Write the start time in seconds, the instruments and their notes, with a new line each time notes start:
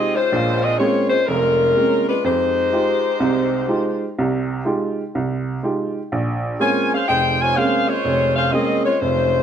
Already playing: upright piano G#3 D#4 F4 G4, saxophone section C4 G4 G#4 D#5
0.15 saxophone section G#3 C#4 F4 C5
0.32 upright piano A#1 A#2
0.63 saxophone section C4 F4 G#4 D#5
0.78 saxophone section G#3 C4 F4 C#5, upright piano G#3 A#3 C4 C#4
1.09 saxophone section G#3 C#4 F4 C5
1.27 upright piano F1 F2, saxophone section G#3 C#4 F4 A#4
1.76 upright piano G#3 A#3 C4 C#4
2.08 saxophone section G#3 D4 F4 B4
2.24 upright piano F2, saxophone section G#3 D#4 G4 C5
2.72 upright piano G#3 D#4 F4 G4
3.20 upright piano C2 C3
3.68 upright piano G#3 D#4 F4 G4
4.18 upright piano C2 C3
4.65 upright piano G#3 D#4 F4 G4
5.15 upright piano C2
5.63 upright piano G#3 D#4 F4 G4
6.12 upright piano A#1
6.60 upright piano G#3 A#3 C4 C#4, saxophone section F4 C5 C#5 G#5
6.94 saxophone section C#4 G#4 C5 F5
7.07 upright piano F1, saxophone section D#4 G#4 C5 G5
7.40 saxophone section F4 C5 C#5 G#5
7.56 upright piano G#3 A#3 C4 C#4, saxophone section C#4 G#4 C5 F5
7.88 saxophone section G#3 F4 C5 C#5
8.05 upright piano F1
8.36 saxophone section C#4 G#4 C5 F5
8.51 upright piano G#3 A#3 C4 C#4, saxophone section C4 F4 G#4 D#5
8.85 saxophone section G#3 C4 F4 C#5
9.00 upright piano F1, saxophone section G#3 C#4 F4 C5